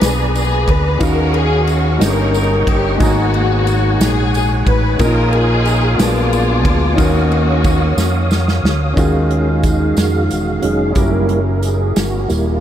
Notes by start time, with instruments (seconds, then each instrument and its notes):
Already playing: grand piano A#2 A#3 B3 D4 F4 G#4, tonewheel organ G#4 B4 D5 A#5
0.01 fingered electric bass B1, string section G#4, snare, ride, tambourine
0.35 string section G#4, ride, tambourine
0.67 fingered electric bass D2, string section B4, kick, ride
0.98 fingered electric bass D#2, grand piano D#3 C#4 D#4 F#4 G#4 F5, tonewheel organ C#6, kick, ride
1.02 string section C#4 F#4 A#4, tonewheel organ F#4 F5, tambourine
1.34 string section G#4, ride
1.67 string section F#4, ride, tambourine
1.96 grand piano G2 A#3 C#4 D#4 F#4 A#4, tonewheel organ C#5
2.00 fingered electric bass G1, string section C#4 D#4 A#4, tonewheel organ D#5 G5, snare, ride, tambourine
2.05 grand piano G4
2.34 string section A#4, ride, tambourine
2.66 fingered electric bass G1, string section G4, kick, ride
2.96 fingered electric bass G#1, grand piano G#2 G#3 D#4 F#4, tonewheel organ F#5 G#5, ride
3.01 string section A#3 B3 F#4, grand piano G#4 A#5, kick, tambourine
3.34 ride
3.67 ride, tambourine
4.00 fingered electric bass A#1, string section G#4, snare, ride, tambourine
4.34 string section G#4, ride, tambourine
4.67 fingered electric bass A1, string section B4, kick, ride
4.98 fingered electric bass A#1, grand piano A#2 A#3 C#4 F4 G#4 A#4, tonewheel organ F5 D#6, kick, ride, tambourine
5.02 string section D#4 F4 A#4, grand piano D#4
5.33 string section G#4, ride
5.37 string section D#4 F4
5.65 ride, tambourine
5.97 fingered electric bass A#1, grand piano A#2 F#3 B3 D4 G#4 A#4, string section G#3 D4 F4, tonewheel organ B3 G#5 D6, snare, ride, tambourine
6.33 ride, tambourine
6.64 fingered electric bass D2, kick, ride
6.94 grand piano D#3 C#4 D#4 F5, tonewheel organ C#5 F5 D#6
6.98 fingered electric bass D#2, string section A#3 C#4 F#4, grand piano F#4 A#4, kick, ride, tambourine
7.32 ride
7.64 kick, ride, tambourine
7.97 fingered electric bass F2, snare, tambourine
8.31 snare, tambourine
8.48 snare
8.64 fingered electric bass D2, snare
8.93 fingered electric bass D#2, tonewheel organ D#3 G#3 C#4 F5, grand piano D#3 C#4 D#4 F4, kick
8.98 grand piano F#4 G#4, closed hi-hat, tambourine
9.30 tonewheel organ C#4, closed hi-hat
9.63 tonewheel organ D#4, kick, closed hi-hat, tambourine
9.97 fingered electric bass F2, tonewheel organ F#4, snare, closed hi-hat, tambourine
10.23 tonewheel organ F4
10.31 fingered electric bass E1, tonewheel organ F#4, closed hi-hat, tambourine
10.62 fingered electric bass F1, tonewheel organ F#3 G#3 C#4 D#4 G#4, closed hi-hat
10.92 fingered electric bass F#1, grand piano C#4 E4 F#4, closed hi-hat
10.96 tonewheel organ G3 A#3 E4 A#4, grand piano G4 A#4, kick, tambourine
11.29 tonewheel organ A#4, closed hi-hat
11.63 tonewheel organ G#4, closed hi-hat, tambourine
11.96 fingered electric bass G1, tonewheel organ F#4, snare, closed hi-hat, tambourine
12.28 fingered electric bass D#1, tonewheel organ G3 A#3 E4, closed hi-hat, tambourine
12.55 tonewheel organ F4